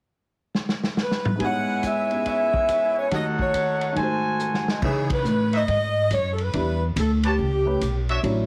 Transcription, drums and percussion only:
0.55 snare
0.69 snare
0.83 snare
0.97 snare
1.11 snare
1.25 mid tom
1.40 kick, ride
1.83 kick, hi-hat pedal, ride
2.11 ride
2.26 kick, ride
2.54 kick
2.69 kick, hi-hat pedal, ride
3.11 kick, snare, ride
3.39 kick
3.54 kick, hi-hat pedal, ride
3.81 ride
3.96 kick, ride
4.39 hi-hat pedal
4.54 snare
4.68 snare
4.82 kick, crash
5.10 kick, ride
5.25 hi-hat pedal
5.53 ride
5.68 kick, ride
6.11 kick, hi-hat pedal, ride
6.38 ride
6.53 kick, ride
6.96 kick, hi-hat pedal, ride
7.23 ride
7.39 kick
7.81 kick, hi-hat pedal, ride
8.09 ride
8.24 kick, ride

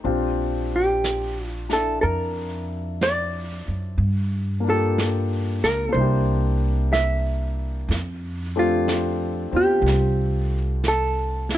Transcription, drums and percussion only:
0.05 brush sweep
1.04 brush sweep, snare, hi-hat pedal
1.70 snare
2.03 brush sweep
3.01 brush sweep, snare, hi-hat pedal
4.00 brush sweep
4.98 brush sweep, snare, hi-hat pedal
5.63 snare
5.97 brush sweep
6.93 brush sweep, snare, hi-hat pedal
7.91 brush sweep, snare
8.88 brush sweep, snare, hi-hat pedal
9.86 brush sweep, snare
10.84 brush sweep, snare, hi-hat pedal
11.49 snare

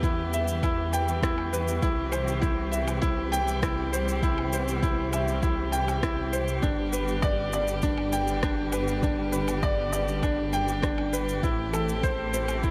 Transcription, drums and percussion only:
0.03 kick, shaker
0.33 shaker
0.48 shaker
0.63 kick, low woodblock, shaker
0.93 shaker
1.08 shaker
1.23 kick, cross-stick, shaker
1.38 low woodblock
1.53 shaker
1.68 shaker
1.82 kick, shaker
2.12 low woodblock, shaker
2.28 shaker
2.43 kick, shaker
2.73 shaker
2.88 low woodblock, shaker
3.03 kick, shaker
3.33 shaker
3.48 shaker
3.63 kick, cross-stick, low woodblock, shaker
3.93 shaker
4.08 shaker
4.23 kick, shaker
4.38 low woodblock
4.53 shaker
4.68 shaker
4.83 kick, shaker
5.13 low woodblock, shaker
5.28 shaker
5.43 kick, shaker
5.73 shaker
5.88 low woodblock, shaker
6.03 kick, cross-stick, shaker
6.33 shaker
6.48 shaker
6.63 kick, shaker
6.93 shaker
7.08 shaker
7.23 kick, low woodblock, shaker
7.53 shaker
7.68 shaker
7.82 kick, shaker
7.98 low woodblock
8.13 shaker
8.28 shaker
8.43 kick, cross-stick, shaker
8.72 low woodblock, shaker
8.88 shaker
9.03 kick, shaker
9.33 shaker
9.48 low woodblock, shaker
9.63 kick, shaker
9.93 shaker
10.08 shaker
10.23 kick, low woodblock, shaker
10.53 shaker
10.68 shaker
10.83 kick, cross-stick, shaker
10.98 low woodblock
11.13 shaker
11.29 shaker
11.43 kick, shaker
11.74 low woodblock, shaker
11.89 shaker
12.03 kick, shaker
12.34 shaker
12.48 low woodblock, shaker
12.63 kick, shaker

